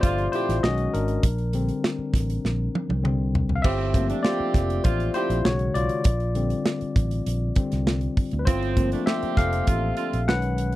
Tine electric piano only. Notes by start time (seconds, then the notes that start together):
Already playing: A#2 F3 A3 C4 F4 G4 D5 E5
0.01 F4 C5
0.32 E4 C5
0.63 D#3 G#3 C#4 F#4 D#5
0.94 D4 A#4
1.53 D3 G3 C4
3.03 D3 G3 C4
3.56 F5
3.62 G4 E5
3.94 F3 A3 A#3 C4
4.23 F4 D5
4.84 F4 C5
5.14 E4 C5
5.45 C#3 D#3 G#3 F#4 C#5
5.74 F4 D5
6.35 D3 G3 C4
7.56 D3 G3 C4
8.39 B4
8.45 F4 C5
8.77 F3 A3 A#3 C4
9.06 G4 E5
9.37 A4 F5
10.28 D#3 G#3 C#4 B4 F#5